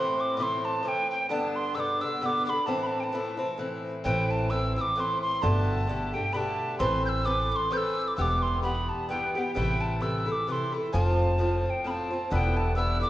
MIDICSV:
0, 0, Header, 1, 4, 480
1, 0, Start_track
1, 0, Key_signature, 0, "minor"
1, 0, Tempo, 458365
1, 1369, Time_signature, 3, 2, 24, 8
1, 13715, End_track
2, 0, Start_track
2, 0, Title_t, "Tin whistle"
2, 0, Program_c, 0, 75
2, 0, Note_on_c, 0, 84, 80
2, 213, Note_on_c, 0, 86, 80
2, 229, Note_off_c, 0, 84, 0
2, 408, Note_off_c, 0, 86, 0
2, 414, Note_on_c, 0, 86, 83
2, 448, Note_on_c, 0, 84, 90
2, 458, Note_off_c, 0, 86, 0
2, 679, Note_on_c, 0, 81, 79
2, 695, Note_off_c, 0, 84, 0
2, 888, Note_off_c, 0, 81, 0
2, 888, Note_on_c, 0, 81, 80
2, 922, Note_on_c, 0, 79, 87
2, 932, Note_off_c, 0, 81, 0
2, 1156, Note_off_c, 0, 79, 0
2, 1161, Note_on_c, 0, 79, 77
2, 1356, Note_off_c, 0, 79, 0
2, 1362, Note_on_c, 0, 81, 87
2, 1631, Note_on_c, 0, 84, 87
2, 1646, Note_off_c, 0, 81, 0
2, 1833, Note_on_c, 0, 88, 84
2, 1849, Note_off_c, 0, 84, 0
2, 1882, Note_on_c, 0, 86, 92
2, 1893, Note_off_c, 0, 88, 0
2, 2108, Note_on_c, 0, 88, 80
2, 2124, Note_off_c, 0, 86, 0
2, 2317, Note_off_c, 0, 88, 0
2, 2317, Note_on_c, 0, 88, 89
2, 2364, Note_on_c, 0, 86, 96
2, 2375, Note_off_c, 0, 88, 0
2, 2569, Note_off_c, 0, 86, 0
2, 2575, Note_on_c, 0, 86, 78
2, 2612, Note_on_c, 0, 83, 85
2, 2623, Note_off_c, 0, 86, 0
2, 2787, Note_on_c, 0, 81, 74
2, 2803, Note_off_c, 0, 83, 0
2, 2965, Note_on_c, 0, 83, 68
2, 2976, Note_off_c, 0, 81, 0
2, 3001, Note_on_c, 0, 81, 74
2, 3011, Note_off_c, 0, 83, 0
2, 3143, Note_on_c, 0, 79, 68
2, 3154, Note_off_c, 0, 81, 0
2, 3179, Note_on_c, 0, 81, 74
2, 3189, Note_off_c, 0, 79, 0
2, 3754, Note_off_c, 0, 81, 0
2, 4232, Note_on_c, 0, 79, 82
2, 4511, Note_on_c, 0, 81, 81
2, 4527, Note_off_c, 0, 79, 0
2, 4714, Note_on_c, 0, 88, 84
2, 4729, Note_off_c, 0, 81, 0
2, 4981, Note_off_c, 0, 88, 0
2, 4987, Note_on_c, 0, 88, 75
2, 5039, Note_on_c, 0, 86, 82
2, 5050, Note_off_c, 0, 88, 0
2, 5195, Note_off_c, 0, 86, 0
2, 5195, Note_on_c, 0, 86, 74
2, 5239, Note_on_c, 0, 84, 81
2, 5249, Note_off_c, 0, 86, 0
2, 5457, Note_off_c, 0, 84, 0
2, 5463, Note_on_c, 0, 84, 91
2, 5677, Note_on_c, 0, 81, 88
2, 5693, Note_off_c, 0, 84, 0
2, 6429, Note_on_c, 0, 79, 77
2, 6445, Note_off_c, 0, 81, 0
2, 6630, Note_on_c, 0, 83, 76
2, 6646, Note_off_c, 0, 79, 0
2, 6668, Note_on_c, 0, 81, 82
2, 6679, Note_off_c, 0, 83, 0
2, 7102, Note_off_c, 0, 81, 0
2, 7108, Note_on_c, 0, 84, 98
2, 7362, Note_off_c, 0, 84, 0
2, 7388, Note_on_c, 0, 91, 80
2, 7424, Note_on_c, 0, 88, 86
2, 7435, Note_off_c, 0, 91, 0
2, 7598, Note_on_c, 0, 86, 96
2, 7614, Note_off_c, 0, 88, 0
2, 7872, Note_off_c, 0, 86, 0
2, 7872, Note_on_c, 0, 86, 75
2, 7917, Note_on_c, 0, 84, 81
2, 7928, Note_off_c, 0, 86, 0
2, 8090, Note_on_c, 0, 91, 88
2, 8105, Note_off_c, 0, 84, 0
2, 8140, Note_on_c, 0, 88, 96
2, 8150, Note_off_c, 0, 91, 0
2, 8459, Note_on_c, 0, 86, 77
2, 8475, Note_off_c, 0, 88, 0
2, 8545, Note_off_c, 0, 86, 0
2, 8551, Note_on_c, 0, 88, 89
2, 8602, Note_on_c, 0, 86, 96
2, 8613, Note_off_c, 0, 88, 0
2, 8821, Note_on_c, 0, 84, 83
2, 8837, Note_off_c, 0, 86, 0
2, 9030, Note_off_c, 0, 84, 0
2, 9036, Note_on_c, 0, 83, 75
2, 9310, Note_on_c, 0, 81, 70
2, 9326, Note_off_c, 0, 83, 0
2, 9517, Note_off_c, 0, 81, 0
2, 9523, Note_on_c, 0, 79, 77
2, 9771, Note_off_c, 0, 79, 0
2, 9781, Note_on_c, 0, 79, 70
2, 9983, Note_off_c, 0, 79, 0
2, 10001, Note_on_c, 0, 79, 84
2, 10271, Note_on_c, 0, 81, 72
2, 10287, Note_off_c, 0, 79, 0
2, 10492, Note_on_c, 0, 88, 82
2, 10508, Note_off_c, 0, 81, 0
2, 10679, Note_off_c, 0, 88, 0
2, 10679, Note_on_c, 0, 88, 67
2, 10761, Note_off_c, 0, 88, 0
2, 10761, Note_on_c, 0, 88, 65
2, 10806, Note_on_c, 0, 86, 71
2, 10817, Note_off_c, 0, 88, 0
2, 10975, Note_off_c, 0, 86, 0
2, 10975, Note_on_c, 0, 86, 65
2, 11015, Note_on_c, 0, 84, 71
2, 11025, Note_off_c, 0, 86, 0
2, 11234, Note_off_c, 0, 84, 0
2, 11446, Note_on_c, 0, 81, 83
2, 12209, Note_off_c, 0, 81, 0
2, 12209, Note_on_c, 0, 81, 64
2, 12252, Note_on_c, 0, 79, 69
2, 12262, Note_off_c, 0, 81, 0
2, 12428, Note_on_c, 0, 83, 77
2, 12444, Note_off_c, 0, 79, 0
2, 12466, Note_on_c, 0, 81, 84
2, 12477, Note_off_c, 0, 83, 0
2, 12890, Note_off_c, 0, 81, 0
2, 12890, Note_on_c, 0, 81, 78
2, 12935, Note_on_c, 0, 79, 85
2, 12946, Note_off_c, 0, 81, 0
2, 13162, Note_on_c, 0, 81, 83
2, 13178, Note_off_c, 0, 79, 0
2, 13358, Note_off_c, 0, 81, 0
2, 13364, Note_on_c, 0, 88, 86
2, 13616, Note_off_c, 0, 88, 0
2, 13637, Note_on_c, 0, 86, 77
2, 13715, Note_off_c, 0, 86, 0
2, 13715, End_track
3, 0, Start_track
3, 0, Title_t, "Bouzouki"
3, 0, Program_c, 1, 25
3, 0, Note_on_c, 1, 45, 68
3, 0, Note_on_c, 1, 52, 63
3, 0, Note_on_c, 1, 60, 77
3, 0, Note_on_c, 1, 64, 77
3, 375, Note_off_c, 1, 45, 0
3, 388, Note_off_c, 1, 52, 0
3, 388, Note_on_c, 1, 45, 64
3, 398, Note_off_c, 1, 60, 0
3, 401, Note_on_c, 1, 52, 48
3, 408, Note_off_c, 1, 64, 0
3, 410, Note_on_c, 1, 60, 67
3, 420, Note_on_c, 1, 64, 61
3, 855, Note_off_c, 1, 45, 0
3, 863, Note_off_c, 1, 52, 0
3, 868, Note_on_c, 1, 45, 58
3, 875, Note_on_c, 1, 52, 49
3, 876, Note_off_c, 1, 60, 0
3, 884, Note_off_c, 1, 64, 0
3, 889, Note_on_c, 1, 60, 58
3, 897, Note_on_c, 1, 64, 58
3, 1351, Note_off_c, 1, 45, 0
3, 1355, Note_on_c, 1, 43, 61
3, 1358, Note_off_c, 1, 52, 0
3, 1362, Note_on_c, 1, 50, 65
3, 1363, Note_off_c, 1, 60, 0
3, 1367, Note_on_c, 1, 59, 70
3, 1371, Note_off_c, 1, 64, 0
3, 1375, Note_on_c, 1, 62, 79
3, 1823, Note_off_c, 1, 43, 0
3, 1836, Note_on_c, 1, 43, 59
3, 1840, Note_off_c, 1, 50, 0
3, 1846, Note_off_c, 1, 59, 0
3, 1850, Note_off_c, 1, 62, 0
3, 1852, Note_on_c, 1, 50, 50
3, 1857, Note_on_c, 1, 59, 60
3, 1870, Note_on_c, 1, 62, 65
3, 2091, Note_off_c, 1, 62, 0
3, 2104, Note_on_c, 1, 62, 57
3, 2108, Note_off_c, 1, 43, 0
3, 2112, Note_off_c, 1, 59, 0
3, 2116, Note_off_c, 1, 50, 0
3, 2125, Note_on_c, 1, 59, 45
3, 2134, Note_on_c, 1, 50, 40
3, 2310, Note_on_c, 1, 43, 56
3, 2314, Note_off_c, 1, 50, 0
3, 2320, Note_off_c, 1, 59, 0
3, 2321, Note_off_c, 1, 62, 0
3, 2327, Note_on_c, 1, 50, 60
3, 2333, Note_on_c, 1, 59, 61
3, 2342, Note_on_c, 1, 62, 49
3, 2564, Note_off_c, 1, 62, 0
3, 2577, Note_on_c, 1, 62, 42
3, 2584, Note_off_c, 1, 59, 0
3, 2585, Note_off_c, 1, 43, 0
3, 2593, Note_off_c, 1, 50, 0
3, 2597, Note_on_c, 1, 59, 44
3, 2607, Note_on_c, 1, 50, 39
3, 2793, Note_off_c, 1, 50, 0
3, 2796, Note_on_c, 1, 45, 61
3, 2797, Note_off_c, 1, 62, 0
3, 2797, Note_on_c, 1, 52, 60
3, 2803, Note_off_c, 1, 59, 0
3, 2807, Note_on_c, 1, 60, 74
3, 2811, Note_on_c, 1, 64, 67
3, 3257, Note_off_c, 1, 45, 0
3, 3269, Note_on_c, 1, 45, 49
3, 3272, Note_off_c, 1, 52, 0
3, 3276, Note_on_c, 1, 52, 57
3, 3282, Note_off_c, 1, 60, 0
3, 3286, Note_on_c, 1, 60, 47
3, 3293, Note_off_c, 1, 64, 0
3, 3297, Note_on_c, 1, 64, 63
3, 3518, Note_off_c, 1, 64, 0
3, 3530, Note_on_c, 1, 64, 49
3, 3534, Note_off_c, 1, 60, 0
3, 3543, Note_off_c, 1, 45, 0
3, 3546, Note_on_c, 1, 60, 56
3, 3547, Note_off_c, 1, 52, 0
3, 3564, Note_on_c, 1, 52, 38
3, 3744, Note_on_c, 1, 45, 54
3, 3748, Note_off_c, 1, 52, 0
3, 3752, Note_off_c, 1, 64, 0
3, 3755, Note_off_c, 1, 60, 0
3, 3760, Note_on_c, 1, 52, 63
3, 3768, Note_on_c, 1, 60, 52
3, 3775, Note_on_c, 1, 64, 62
3, 4218, Note_off_c, 1, 45, 0
3, 4229, Note_off_c, 1, 52, 0
3, 4231, Note_off_c, 1, 60, 0
3, 4231, Note_on_c, 1, 45, 67
3, 4241, Note_on_c, 1, 52, 61
3, 4242, Note_off_c, 1, 64, 0
3, 4243, Note_on_c, 1, 60, 70
3, 4254, Note_on_c, 1, 64, 69
3, 4700, Note_off_c, 1, 45, 0
3, 4708, Note_off_c, 1, 52, 0
3, 4713, Note_on_c, 1, 45, 55
3, 4718, Note_off_c, 1, 60, 0
3, 4721, Note_on_c, 1, 52, 49
3, 4727, Note_off_c, 1, 64, 0
3, 4730, Note_on_c, 1, 60, 54
3, 4742, Note_on_c, 1, 64, 59
3, 4975, Note_off_c, 1, 64, 0
3, 4984, Note_off_c, 1, 45, 0
3, 4988, Note_off_c, 1, 52, 0
3, 4988, Note_on_c, 1, 64, 47
3, 4993, Note_off_c, 1, 60, 0
3, 5005, Note_on_c, 1, 60, 40
3, 5019, Note_on_c, 1, 52, 41
3, 5189, Note_on_c, 1, 45, 48
3, 5191, Note_off_c, 1, 52, 0
3, 5197, Note_off_c, 1, 60, 0
3, 5200, Note_off_c, 1, 64, 0
3, 5204, Note_on_c, 1, 52, 57
3, 5209, Note_on_c, 1, 60, 51
3, 5224, Note_on_c, 1, 64, 62
3, 5674, Note_off_c, 1, 45, 0
3, 5679, Note_on_c, 1, 47, 73
3, 5681, Note_off_c, 1, 52, 0
3, 5684, Note_off_c, 1, 60, 0
3, 5686, Note_on_c, 1, 50, 80
3, 5691, Note_off_c, 1, 64, 0
3, 5693, Note_on_c, 1, 57, 75
3, 5696, Note_on_c, 1, 67, 65
3, 6137, Note_off_c, 1, 47, 0
3, 6150, Note_off_c, 1, 50, 0
3, 6150, Note_on_c, 1, 47, 55
3, 6163, Note_on_c, 1, 50, 55
3, 6167, Note_off_c, 1, 67, 0
3, 6169, Note_off_c, 1, 57, 0
3, 6173, Note_on_c, 1, 57, 61
3, 6185, Note_on_c, 1, 67, 59
3, 6412, Note_off_c, 1, 67, 0
3, 6422, Note_off_c, 1, 47, 0
3, 6425, Note_on_c, 1, 67, 48
3, 6429, Note_off_c, 1, 50, 0
3, 6429, Note_off_c, 1, 57, 0
3, 6441, Note_on_c, 1, 57, 43
3, 6452, Note_on_c, 1, 50, 38
3, 6623, Note_on_c, 1, 47, 55
3, 6626, Note_off_c, 1, 50, 0
3, 6632, Note_off_c, 1, 57, 0
3, 6638, Note_off_c, 1, 67, 0
3, 6639, Note_on_c, 1, 50, 61
3, 6644, Note_on_c, 1, 57, 64
3, 6654, Note_on_c, 1, 67, 55
3, 7107, Note_off_c, 1, 47, 0
3, 7111, Note_on_c, 1, 52, 62
3, 7116, Note_off_c, 1, 50, 0
3, 7121, Note_on_c, 1, 60, 75
3, 7122, Note_off_c, 1, 57, 0
3, 7125, Note_off_c, 1, 67, 0
3, 7129, Note_on_c, 1, 69, 69
3, 7130, Note_on_c, 1, 71, 76
3, 7584, Note_off_c, 1, 52, 0
3, 7585, Note_off_c, 1, 60, 0
3, 7588, Note_on_c, 1, 52, 55
3, 7594, Note_off_c, 1, 69, 0
3, 7598, Note_on_c, 1, 60, 61
3, 7606, Note_on_c, 1, 69, 61
3, 7610, Note_off_c, 1, 71, 0
3, 7614, Note_on_c, 1, 71, 68
3, 8064, Note_off_c, 1, 52, 0
3, 8069, Note_off_c, 1, 60, 0
3, 8069, Note_on_c, 1, 52, 61
3, 8078, Note_off_c, 1, 69, 0
3, 8081, Note_on_c, 1, 60, 60
3, 8087, Note_off_c, 1, 71, 0
3, 8091, Note_on_c, 1, 69, 64
3, 8098, Note_on_c, 1, 71, 67
3, 8547, Note_off_c, 1, 52, 0
3, 8552, Note_on_c, 1, 43, 60
3, 8559, Note_off_c, 1, 60, 0
3, 8563, Note_on_c, 1, 52, 75
3, 8564, Note_off_c, 1, 69, 0
3, 8568, Note_on_c, 1, 59, 65
3, 8569, Note_off_c, 1, 71, 0
3, 8576, Note_on_c, 1, 67, 76
3, 9018, Note_off_c, 1, 43, 0
3, 9030, Note_on_c, 1, 43, 52
3, 9034, Note_off_c, 1, 59, 0
3, 9035, Note_off_c, 1, 52, 0
3, 9040, Note_on_c, 1, 52, 51
3, 9047, Note_on_c, 1, 59, 63
3, 9049, Note_off_c, 1, 67, 0
3, 9060, Note_on_c, 1, 67, 58
3, 9504, Note_off_c, 1, 43, 0
3, 9516, Note_on_c, 1, 43, 57
3, 9521, Note_off_c, 1, 52, 0
3, 9525, Note_off_c, 1, 59, 0
3, 9531, Note_off_c, 1, 67, 0
3, 9532, Note_on_c, 1, 52, 56
3, 9539, Note_on_c, 1, 59, 51
3, 9545, Note_on_c, 1, 67, 58
3, 9780, Note_off_c, 1, 67, 0
3, 9787, Note_off_c, 1, 43, 0
3, 9793, Note_on_c, 1, 67, 43
3, 9795, Note_off_c, 1, 52, 0
3, 9798, Note_off_c, 1, 59, 0
3, 9813, Note_on_c, 1, 59, 40
3, 9819, Note_on_c, 1, 52, 39
3, 9998, Note_off_c, 1, 52, 0
3, 9999, Note_on_c, 1, 48, 62
3, 10004, Note_off_c, 1, 67, 0
3, 10011, Note_off_c, 1, 59, 0
3, 10011, Note_on_c, 1, 52, 71
3, 10015, Note_on_c, 1, 57, 77
3, 10022, Note_on_c, 1, 64, 79
3, 10466, Note_off_c, 1, 48, 0
3, 10478, Note_on_c, 1, 48, 51
3, 10479, Note_off_c, 1, 52, 0
3, 10491, Note_off_c, 1, 57, 0
3, 10491, Note_on_c, 1, 52, 51
3, 10493, Note_off_c, 1, 64, 0
3, 10496, Note_on_c, 1, 57, 57
3, 10512, Note_on_c, 1, 64, 52
3, 10730, Note_off_c, 1, 64, 0
3, 10742, Note_off_c, 1, 57, 0
3, 10742, Note_on_c, 1, 64, 49
3, 10749, Note_off_c, 1, 48, 0
3, 10754, Note_on_c, 1, 57, 41
3, 10755, Note_off_c, 1, 52, 0
3, 10769, Note_on_c, 1, 52, 44
3, 10960, Note_off_c, 1, 64, 0
3, 10966, Note_off_c, 1, 57, 0
3, 10967, Note_off_c, 1, 52, 0
3, 10967, Note_on_c, 1, 48, 47
3, 10979, Note_on_c, 1, 52, 53
3, 10987, Note_on_c, 1, 57, 55
3, 10996, Note_on_c, 1, 64, 57
3, 11214, Note_off_c, 1, 64, 0
3, 11227, Note_on_c, 1, 64, 39
3, 11232, Note_off_c, 1, 57, 0
3, 11234, Note_off_c, 1, 48, 0
3, 11240, Note_off_c, 1, 52, 0
3, 11245, Note_on_c, 1, 57, 37
3, 11251, Note_on_c, 1, 52, 36
3, 11441, Note_on_c, 1, 45, 61
3, 11442, Note_off_c, 1, 64, 0
3, 11448, Note_off_c, 1, 52, 0
3, 11451, Note_off_c, 1, 57, 0
3, 11452, Note_on_c, 1, 53, 68
3, 11459, Note_on_c, 1, 60, 78
3, 11464, Note_on_c, 1, 65, 72
3, 11907, Note_off_c, 1, 45, 0
3, 11916, Note_off_c, 1, 53, 0
3, 11920, Note_on_c, 1, 45, 53
3, 11928, Note_off_c, 1, 60, 0
3, 11929, Note_on_c, 1, 53, 62
3, 11935, Note_off_c, 1, 65, 0
3, 11941, Note_on_c, 1, 60, 62
3, 11948, Note_on_c, 1, 65, 58
3, 12389, Note_off_c, 1, 45, 0
3, 12402, Note_off_c, 1, 53, 0
3, 12402, Note_on_c, 1, 45, 59
3, 12414, Note_off_c, 1, 60, 0
3, 12415, Note_on_c, 1, 53, 56
3, 12418, Note_off_c, 1, 65, 0
3, 12426, Note_on_c, 1, 60, 59
3, 12437, Note_on_c, 1, 65, 52
3, 12662, Note_off_c, 1, 65, 0
3, 12673, Note_off_c, 1, 45, 0
3, 12674, Note_on_c, 1, 65, 43
3, 12679, Note_off_c, 1, 53, 0
3, 12679, Note_off_c, 1, 60, 0
3, 12691, Note_on_c, 1, 60, 36
3, 12705, Note_on_c, 1, 53, 39
3, 12886, Note_on_c, 1, 43, 60
3, 12888, Note_off_c, 1, 65, 0
3, 12890, Note_off_c, 1, 53, 0
3, 12894, Note_on_c, 1, 50, 84
3, 12896, Note_off_c, 1, 60, 0
3, 12905, Note_on_c, 1, 59, 72
3, 12907, Note_on_c, 1, 64, 75
3, 13340, Note_off_c, 1, 43, 0
3, 13352, Note_on_c, 1, 43, 60
3, 13353, Note_off_c, 1, 50, 0
3, 13364, Note_off_c, 1, 59, 0
3, 13366, Note_on_c, 1, 50, 54
3, 13376, Note_on_c, 1, 59, 60
3, 13381, Note_off_c, 1, 64, 0
3, 13385, Note_on_c, 1, 64, 70
3, 13604, Note_off_c, 1, 64, 0
3, 13617, Note_on_c, 1, 64, 47
3, 13623, Note_off_c, 1, 59, 0
3, 13629, Note_off_c, 1, 43, 0
3, 13633, Note_off_c, 1, 50, 0
3, 13636, Note_on_c, 1, 59, 44
3, 13646, Note_on_c, 1, 50, 42
3, 13715, Note_off_c, 1, 50, 0
3, 13715, Note_off_c, 1, 59, 0
3, 13715, Note_off_c, 1, 64, 0
3, 13715, End_track
4, 0, Start_track
4, 0, Title_t, "Upright bass"
4, 0, Program_c, 2, 32
4, 4244, Note_on_c, 2, 33, 95
4, 4982, Note_off_c, 2, 33, 0
4, 5690, Note_on_c, 2, 31, 96
4, 6425, Note_off_c, 2, 31, 0
4, 7122, Note_on_c, 2, 33, 82
4, 7861, Note_off_c, 2, 33, 0
4, 8568, Note_on_c, 2, 28, 87
4, 9306, Note_off_c, 2, 28, 0
4, 10019, Note_on_c, 2, 33, 79
4, 10753, Note_off_c, 2, 33, 0
4, 11458, Note_on_c, 2, 29, 90
4, 12194, Note_off_c, 2, 29, 0
4, 12899, Note_on_c, 2, 28, 98
4, 13636, Note_off_c, 2, 28, 0
4, 13715, End_track
0, 0, End_of_file